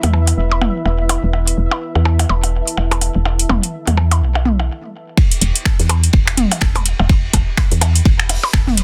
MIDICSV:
0, 0, Header, 1, 6, 480
1, 0, Start_track
1, 0, Tempo, 480000
1, 1335, Time_signature, 4, 2, 24, 8
1, 8837, End_track
2, 0, Start_track
2, 0, Title_t, "Ambient pad"
2, 0, Program_c, 0, 92
2, 0, Note_on_c, 0, 64, 82
2, 0, Note_on_c, 0, 71, 75
2, 0, Note_on_c, 0, 83, 75
2, 1387, Note_on_c, 0, 81, 77
2, 1532, Note_off_c, 0, 83, 0
2, 4694, Note_off_c, 0, 71, 0
2, 4694, Note_off_c, 0, 81, 0
2, 4695, Note_off_c, 0, 64, 0
2, 6764, Note_on_c, 0, 83, 77
2, 8837, Note_off_c, 0, 83, 0
2, 8837, End_track
3, 0, Start_track
3, 0, Title_t, "Synth texture"
3, 0, Program_c, 1, 99
3, 0, Note_on_c, 1, 76, 77
3, 4695, Note_off_c, 1, 76, 0
3, 8837, End_track
4, 0, Start_track
4, 0, Title_t, "FM bass"
4, 0, Program_c, 2, 39
4, 35, Note_on_c, 2, 40, 99
4, 330, Note_off_c, 2, 40, 0
4, 374, Note_on_c, 2, 28, 78
4, 692, Note_off_c, 2, 28, 0
4, 854, Note_on_c, 2, 28, 91
4, 1172, Note_off_c, 2, 28, 0
4, 1234, Note_on_c, 2, 28, 101
4, 1530, Note_off_c, 2, 28, 0
4, 1575, Note_on_c, 2, 28, 101
4, 1676, Note_off_c, 2, 28, 0
4, 1954, Note_on_c, 2, 40, 98
4, 2250, Note_off_c, 2, 40, 0
4, 2294, Note_on_c, 2, 28, 80
4, 2612, Note_off_c, 2, 28, 0
4, 2775, Note_on_c, 2, 28, 89
4, 3092, Note_off_c, 2, 28, 0
4, 3155, Note_on_c, 2, 28, 104
4, 3450, Note_off_c, 2, 28, 0
4, 3495, Note_on_c, 2, 28, 98
4, 3596, Note_off_c, 2, 28, 0
4, 3874, Note_on_c, 2, 40, 99
4, 4215, Note_on_c, 2, 35, 83
4, 4230, Note_off_c, 2, 40, 0
4, 4695, Note_off_c, 2, 35, 0
4, 5414, Note_on_c, 2, 28, 103
4, 5516, Note_off_c, 2, 28, 0
4, 5795, Note_on_c, 2, 40, 100
4, 6090, Note_off_c, 2, 40, 0
4, 6135, Note_on_c, 2, 28, 85
4, 6452, Note_off_c, 2, 28, 0
4, 6615, Note_on_c, 2, 28, 96
4, 6932, Note_off_c, 2, 28, 0
4, 6995, Note_on_c, 2, 28, 107
4, 7290, Note_off_c, 2, 28, 0
4, 7335, Note_on_c, 2, 28, 102
4, 7436, Note_off_c, 2, 28, 0
4, 7715, Note_on_c, 2, 40, 103
4, 8010, Note_off_c, 2, 40, 0
4, 8055, Note_on_c, 2, 28, 85
4, 8372, Note_off_c, 2, 28, 0
4, 8535, Note_on_c, 2, 28, 92
4, 8837, Note_off_c, 2, 28, 0
4, 8837, End_track
5, 0, Start_track
5, 0, Title_t, "Percussion blips"
5, 35, Note_on_c, 9, 60, 80
5, 135, Note_off_c, 9, 60, 0
5, 135, Note_on_c, 9, 77, 77
5, 235, Note_off_c, 9, 77, 0
5, 275, Note_on_c, 9, 60, 39
5, 375, Note_off_c, 9, 60, 0
5, 515, Note_on_c, 9, 56, 59
5, 615, Note_off_c, 9, 56, 0
5, 615, Note_on_c, 9, 60, 72
5, 715, Note_off_c, 9, 60, 0
5, 855, Note_on_c, 9, 60, 39
5, 955, Note_off_c, 9, 60, 0
5, 1094, Note_on_c, 9, 56, 57
5, 1094, Note_on_c, 9, 60, 74
5, 1195, Note_off_c, 9, 56, 0
5, 1195, Note_off_c, 9, 60, 0
5, 1334, Note_on_c, 9, 60, 38
5, 1434, Note_off_c, 9, 60, 0
5, 1714, Note_on_c, 9, 56, 59
5, 1714, Note_on_c, 9, 60, 73
5, 1814, Note_off_c, 9, 56, 0
5, 1814, Note_off_c, 9, 60, 0
5, 1954, Note_on_c, 9, 60, 40
5, 2054, Note_off_c, 9, 60, 0
5, 2054, Note_on_c, 9, 77, 79
5, 2154, Note_off_c, 9, 77, 0
5, 2194, Note_on_c, 9, 60, 74
5, 2294, Note_off_c, 9, 60, 0
5, 2294, Note_on_c, 9, 56, 55
5, 2395, Note_off_c, 9, 56, 0
5, 2435, Note_on_c, 9, 60, 37
5, 2535, Note_off_c, 9, 60, 0
5, 2774, Note_on_c, 9, 60, 77
5, 2874, Note_off_c, 9, 60, 0
5, 2914, Note_on_c, 9, 56, 59
5, 2914, Note_on_c, 9, 77, 76
5, 3014, Note_off_c, 9, 56, 0
5, 3014, Note_off_c, 9, 77, 0
5, 3014, Note_on_c, 9, 60, 36
5, 3114, Note_off_c, 9, 60, 0
5, 3255, Note_on_c, 9, 60, 75
5, 3355, Note_off_c, 9, 60, 0
5, 3495, Note_on_c, 9, 56, 62
5, 3495, Note_on_c, 9, 60, 38
5, 3495, Note_on_c, 9, 77, 51
5, 3595, Note_off_c, 9, 56, 0
5, 3595, Note_off_c, 9, 60, 0
5, 3595, Note_off_c, 9, 77, 0
5, 3875, Note_on_c, 9, 60, 73
5, 3974, Note_on_c, 9, 77, 80
5, 3975, Note_off_c, 9, 60, 0
5, 4074, Note_off_c, 9, 77, 0
5, 4114, Note_on_c, 9, 56, 62
5, 4114, Note_on_c, 9, 60, 37
5, 4214, Note_off_c, 9, 56, 0
5, 4214, Note_off_c, 9, 60, 0
5, 4354, Note_on_c, 9, 60, 69
5, 4454, Note_off_c, 9, 60, 0
5, 4595, Note_on_c, 9, 60, 36
5, 4695, Note_off_c, 9, 60, 0
5, 5894, Note_on_c, 9, 56, 67
5, 5894, Note_on_c, 9, 77, 77
5, 5994, Note_off_c, 9, 56, 0
5, 5994, Note_off_c, 9, 77, 0
5, 6515, Note_on_c, 9, 60, 69
5, 6615, Note_off_c, 9, 60, 0
5, 6755, Note_on_c, 9, 56, 67
5, 6755, Note_on_c, 9, 77, 75
5, 6855, Note_off_c, 9, 56, 0
5, 6855, Note_off_c, 9, 77, 0
5, 6995, Note_on_c, 9, 60, 72
5, 7095, Note_off_c, 9, 60, 0
5, 7335, Note_on_c, 9, 77, 57
5, 7435, Note_off_c, 9, 77, 0
5, 7575, Note_on_c, 9, 56, 62
5, 7675, Note_off_c, 9, 56, 0
5, 7814, Note_on_c, 9, 60, 66
5, 7814, Note_on_c, 9, 77, 79
5, 7914, Note_off_c, 9, 60, 0
5, 7914, Note_off_c, 9, 77, 0
5, 8294, Note_on_c, 9, 60, 61
5, 8394, Note_off_c, 9, 60, 0
5, 8435, Note_on_c, 9, 56, 67
5, 8535, Note_off_c, 9, 56, 0
5, 8837, End_track
6, 0, Start_track
6, 0, Title_t, "Drums"
6, 34, Note_on_c, 9, 42, 46
6, 35, Note_on_c, 9, 47, 80
6, 134, Note_off_c, 9, 42, 0
6, 135, Note_off_c, 9, 47, 0
6, 274, Note_on_c, 9, 42, 44
6, 374, Note_off_c, 9, 42, 0
6, 615, Note_on_c, 9, 47, 81
6, 715, Note_off_c, 9, 47, 0
6, 1094, Note_on_c, 9, 42, 49
6, 1194, Note_off_c, 9, 42, 0
6, 1474, Note_on_c, 9, 42, 45
6, 1574, Note_off_c, 9, 42, 0
6, 2194, Note_on_c, 9, 42, 46
6, 2294, Note_off_c, 9, 42, 0
6, 2435, Note_on_c, 9, 42, 31
6, 2535, Note_off_c, 9, 42, 0
6, 2675, Note_on_c, 9, 42, 37
6, 2775, Note_off_c, 9, 42, 0
6, 2915, Note_on_c, 9, 42, 29
6, 3014, Note_off_c, 9, 42, 0
6, 3014, Note_on_c, 9, 42, 48
6, 3114, Note_off_c, 9, 42, 0
6, 3395, Note_on_c, 9, 42, 46
6, 3495, Note_off_c, 9, 42, 0
6, 3495, Note_on_c, 9, 47, 90
6, 3595, Note_off_c, 9, 47, 0
6, 3634, Note_on_c, 9, 42, 43
6, 3734, Note_off_c, 9, 42, 0
6, 3874, Note_on_c, 9, 42, 43
6, 3875, Note_on_c, 9, 47, 76
6, 3974, Note_off_c, 9, 42, 0
6, 3975, Note_off_c, 9, 47, 0
6, 4114, Note_on_c, 9, 42, 42
6, 4214, Note_off_c, 9, 42, 0
6, 4454, Note_on_c, 9, 47, 75
6, 4554, Note_off_c, 9, 47, 0
6, 5175, Note_on_c, 9, 36, 122
6, 5178, Note_on_c, 9, 51, 98
6, 5275, Note_off_c, 9, 36, 0
6, 5278, Note_off_c, 9, 51, 0
6, 5315, Note_on_c, 9, 42, 52
6, 5415, Note_off_c, 9, 42, 0
6, 5415, Note_on_c, 9, 42, 92
6, 5422, Note_on_c, 9, 51, 64
6, 5515, Note_off_c, 9, 42, 0
6, 5522, Note_off_c, 9, 51, 0
6, 5555, Note_on_c, 9, 42, 49
6, 5654, Note_on_c, 9, 26, 92
6, 5655, Note_off_c, 9, 42, 0
6, 5655, Note_on_c, 9, 36, 125
6, 5656, Note_on_c, 9, 38, 127
6, 5656, Note_on_c, 9, 51, 83
6, 5754, Note_off_c, 9, 26, 0
6, 5755, Note_off_c, 9, 36, 0
6, 5756, Note_off_c, 9, 38, 0
6, 5756, Note_off_c, 9, 51, 0
6, 5794, Note_on_c, 9, 38, 55
6, 5795, Note_on_c, 9, 42, 51
6, 5894, Note_off_c, 9, 38, 0
6, 5895, Note_off_c, 9, 42, 0
6, 5895, Note_on_c, 9, 42, 100
6, 5897, Note_on_c, 9, 51, 65
6, 5995, Note_off_c, 9, 42, 0
6, 5997, Note_off_c, 9, 51, 0
6, 6035, Note_on_c, 9, 42, 53
6, 6130, Note_on_c, 9, 51, 96
6, 6135, Note_off_c, 9, 42, 0
6, 6135, Note_on_c, 9, 36, 126
6, 6230, Note_off_c, 9, 51, 0
6, 6235, Note_off_c, 9, 36, 0
6, 6275, Note_on_c, 9, 26, 66
6, 6275, Note_on_c, 9, 42, 33
6, 6374, Note_off_c, 9, 42, 0
6, 6374, Note_on_c, 9, 42, 99
6, 6374, Note_on_c, 9, 47, 100
6, 6375, Note_off_c, 9, 26, 0
6, 6376, Note_on_c, 9, 51, 78
6, 6474, Note_off_c, 9, 42, 0
6, 6474, Note_off_c, 9, 47, 0
6, 6476, Note_off_c, 9, 51, 0
6, 6515, Note_on_c, 9, 42, 45
6, 6608, Note_on_c, 9, 51, 83
6, 6615, Note_off_c, 9, 42, 0
6, 6615, Note_on_c, 9, 26, 95
6, 6615, Note_on_c, 9, 36, 118
6, 6621, Note_on_c, 9, 38, 118
6, 6708, Note_off_c, 9, 51, 0
6, 6715, Note_off_c, 9, 26, 0
6, 6715, Note_off_c, 9, 36, 0
6, 6721, Note_off_c, 9, 38, 0
6, 6747, Note_on_c, 9, 51, 49
6, 6756, Note_on_c, 9, 42, 34
6, 6847, Note_off_c, 9, 51, 0
6, 6855, Note_off_c, 9, 42, 0
6, 6855, Note_on_c, 9, 42, 94
6, 6860, Note_on_c, 9, 51, 66
6, 6955, Note_off_c, 9, 42, 0
6, 6959, Note_off_c, 9, 51, 0
6, 7093, Note_on_c, 9, 51, 91
6, 7095, Note_on_c, 9, 36, 126
6, 7193, Note_off_c, 9, 51, 0
6, 7195, Note_off_c, 9, 36, 0
6, 7335, Note_on_c, 9, 36, 65
6, 7335, Note_on_c, 9, 42, 99
6, 7336, Note_on_c, 9, 51, 67
6, 7435, Note_off_c, 9, 36, 0
6, 7435, Note_off_c, 9, 42, 0
6, 7436, Note_off_c, 9, 51, 0
6, 7573, Note_on_c, 9, 51, 93
6, 7575, Note_on_c, 9, 26, 94
6, 7575, Note_on_c, 9, 36, 127
6, 7576, Note_on_c, 9, 38, 111
6, 7673, Note_off_c, 9, 51, 0
6, 7675, Note_off_c, 9, 26, 0
6, 7675, Note_off_c, 9, 36, 0
6, 7676, Note_off_c, 9, 38, 0
6, 7715, Note_on_c, 9, 42, 46
6, 7719, Note_on_c, 9, 51, 41
6, 7815, Note_off_c, 9, 42, 0
6, 7815, Note_on_c, 9, 42, 105
6, 7819, Note_off_c, 9, 51, 0
6, 7820, Note_on_c, 9, 51, 72
6, 7915, Note_off_c, 9, 42, 0
6, 7920, Note_off_c, 9, 51, 0
6, 7955, Note_on_c, 9, 42, 48
6, 8055, Note_off_c, 9, 42, 0
6, 8055, Note_on_c, 9, 36, 125
6, 8058, Note_on_c, 9, 51, 89
6, 8155, Note_off_c, 9, 36, 0
6, 8158, Note_off_c, 9, 51, 0
6, 8194, Note_on_c, 9, 51, 46
6, 8195, Note_on_c, 9, 26, 67
6, 8294, Note_off_c, 9, 51, 0
6, 8294, Note_on_c, 9, 42, 99
6, 8295, Note_off_c, 9, 26, 0
6, 8298, Note_on_c, 9, 46, 84
6, 8394, Note_off_c, 9, 42, 0
6, 8398, Note_off_c, 9, 46, 0
6, 8433, Note_on_c, 9, 51, 49
6, 8533, Note_off_c, 9, 51, 0
6, 8534, Note_on_c, 9, 26, 95
6, 8534, Note_on_c, 9, 38, 127
6, 8535, Note_on_c, 9, 36, 127
6, 8537, Note_on_c, 9, 51, 89
6, 8634, Note_off_c, 9, 26, 0
6, 8634, Note_off_c, 9, 38, 0
6, 8635, Note_off_c, 9, 36, 0
6, 8637, Note_off_c, 9, 51, 0
6, 8674, Note_on_c, 9, 38, 52
6, 8674, Note_on_c, 9, 47, 95
6, 8774, Note_off_c, 9, 38, 0
6, 8774, Note_off_c, 9, 47, 0
6, 8774, Note_on_c, 9, 42, 99
6, 8775, Note_on_c, 9, 51, 67
6, 8837, Note_off_c, 9, 42, 0
6, 8837, Note_off_c, 9, 51, 0
6, 8837, End_track
0, 0, End_of_file